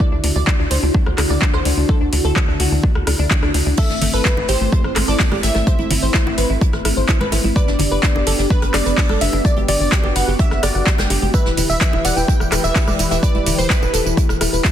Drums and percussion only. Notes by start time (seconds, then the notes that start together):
0.24 open hi-hat
0.47 kick, clap
0.71 open hi-hat
0.94 kick
1.06 cross-stick
1.18 cross-stick, clap, open hi-hat
1.42 kick, clap
1.54 cross-stick
1.65 open hi-hat
1.89 kick
2.13 open hi-hat
2.36 kick, clap
2.60 open hi-hat
2.83 kick
2.95 cross-stick
3.07 cross-stick, open hi-hat
3.31 kick, clap
3.43 cross-stick
3.54 open hi-hat
3.77 kick, closed hi-hat, crash
3.90 snare
4.01 closed hi-hat, open hi-hat, low conga
4.25 kick, snare, clap, closed hi-hat
4.37 high bongo
4.48 closed hi-hat, open hi-hat
4.72 kick, closed hi-hat
4.84 cross-stick
4.96 cross-stick, clap, closed hi-hat, open hi-hat, high conga
5.07 closed hi-hat
5.20 kick, snare, clap, open hi-hat
5.32 cross-stick, high conga
5.43 closed hi-hat, open hi-hat
5.55 snare, high bongo
5.67 kick, closed hi-hat
5.79 closed hi-hat, high conga
5.91 closed hi-hat, open hi-hat, low conga
6.14 kick, snare, clap, closed hi-hat
6.27 high bongo
6.38 closed hi-hat, open hi-hat
6.61 kick, closed hi-hat
6.73 cross-stick, snare
6.85 cross-stick, closed hi-hat, open hi-hat
7.08 kick, snare, clap, closed hi-hat
7.20 cross-stick, closed hi-hat, high bongo, high conga
7.32 closed hi-hat, open hi-hat, high bongo
7.44 high conga
7.56 kick, closed hi-hat
7.68 snare
7.79 closed hi-hat, open hi-hat, low conga
8.03 kick, snare, clap, closed hi-hat
8.16 high bongo
8.27 closed hi-hat, open hi-hat
8.39 snare
8.50 kick, closed hi-hat
8.62 cross-stick, closed hi-hat
8.74 cross-stick, snare, clap, open hi-hat, high conga
8.86 closed hi-hat
8.98 kick, snare, clap, open hi-hat
9.09 cross-stick, high conga
9.21 closed hi-hat, open hi-hat
9.33 high bongo
9.45 kick, closed hi-hat
9.57 closed hi-hat, high conga
9.68 closed hi-hat, open hi-hat, low conga
9.92 kick, snare, clap, closed hi-hat
10.03 high bongo
10.16 closed hi-hat, open hi-hat
10.39 kick, closed hi-hat
10.51 cross-stick, snare
10.63 cross-stick, closed hi-hat, open hi-hat
10.87 kick, snare, clap, closed hi-hat
10.98 cross-stick, snare, closed hi-hat, high bongo, high conga
11.10 closed hi-hat, open hi-hat, high bongo
11.23 high conga
11.34 kick, closed hi-hat, tambourine
11.46 snare
11.57 closed hi-hat, open hi-hat, tambourine, low conga
11.70 tambourine
11.81 kick, snare, clap, closed hi-hat, tambourine
11.93 high bongo
12.05 closed hi-hat, open hi-hat, tambourine
12.17 tambourine
12.28 kick, closed hi-hat, tambourine
12.40 cross-stick, tambourine
12.51 cross-stick, clap, closed hi-hat, open hi-hat, tambourine, high conga
12.64 closed hi-hat, tambourine
12.75 kick, snare, clap, open hi-hat, tambourine
12.88 cross-stick, tambourine, high conga
12.99 closed hi-hat, open hi-hat, tambourine
13.11 snare, tambourine, high bongo
13.23 kick, closed hi-hat, tambourine
13.34 closed hi-hat, high conga
13.46 closed hi-hat, open hi-hat, tambourine, low conga
13.59 tambourine
13.70 kick, snare, clap, closed hi-hat, tambourine
13.83 tambourine, high bongo
13.94 closed hi-hat, open hi-hat, tambourine
14.06 tambourine
14.17 kick, closed hi-hat, tambourine
14.29 cross-stick, snare, tambourine
14.41 cross-stick, closed hi-hat, open hi-hat, tambourine
14.54 tambourine
14.64 kick, snare, clap, closed hi-hat, tambourine